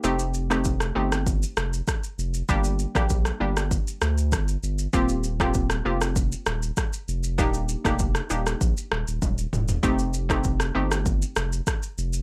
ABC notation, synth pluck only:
X:1
M:4/4
L:1/16
Q:1/4=98
K:Fmix
V:1 name="Synth pluck"
[A,CEG]3 [A,CEG]3 [A,CEG]2 z8 | [G,B,DG]3 [G,B,DG]3 [G,B,DG]2 z8 | [B,CFG]3 [B,CFG]3 [B,CFG]2 z8 | [B,DEG]3 [B,DEG]3 [B,DEG]2 z8 |
[A,CEG]3 [A,CEG]3 [A,CEG]2 z8 |]